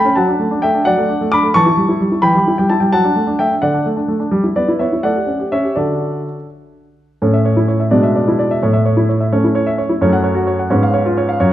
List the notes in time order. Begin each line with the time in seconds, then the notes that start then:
Already playing: G5 B5
0.05 C#4
0.15 F#3 F#5 A5
0.28 D4
0.39 A3
0.51 D4
0.62 A3 E5 G5
0.74 D4
0.85 F#3 D5 F#5
0.97 A3
1.09 D4
1.21 A3
1.32 D4 B5 D6
1.43 A3
1.54 E3 A5 C#6
1.66 E4
1.77 G3
1.89 E4
2.00 G3
2.12 E4
2.22 E3 G5 B5
2.35 G3
2.47 E4
2.58 G3 G5
2.70 E4 A5
2.80 G3 G5
2.93 F#3 F#5 A5
3.04 D4
3.16 A3
3.27 D4
3.39 A3 E5 G5
3.51 D4
3.62 D3 D5 F#5
3.74 D4
3.86 A3
3.97 D4
4.08 A3
4.20 D4
4.31 G3
4.44 E4
4.56 B3 B4 D5
4.68 E4
4.79 B3 C#5 E5
4.93 E4
5.03 A3 D5 F#5
5.16 G4
5.27 C#4
5.39 G4
5.52 C#4 C#5 E5
5.63 G4
5.76 D3 D4 F#4 A4 D5
7.22 A2 A3 C#4 C#5
7.34 E5
7.45 C#5
7.57 E4
7.68 C#5
7.80 E5
7.91 B2 G#3 D4 D5
8.03 E5
8.16 D5
8.28 E4
8.39 D5
8.51 E5
8.63 A2 C#5
8.73 E5
8.85 C#5
8.97 E4
9.09 C#5
9.21 E5
9.32 A3 C#4 C#5
9.44 E4
9.55 C#5
9.67 E5
9.78 C#5
9.89 E4
10.01 F#2 A3 C#4 C#5
10.13 F#5
10.24 C#5
10.35 F#4
10.47 C#5
10.59 F#5
10.70 G#2 B3 C#4 C#5
10.83 F5
10.93 C#5
11.06 F4
11.17 C#5
11.29 F5
11.40 F#2 C#5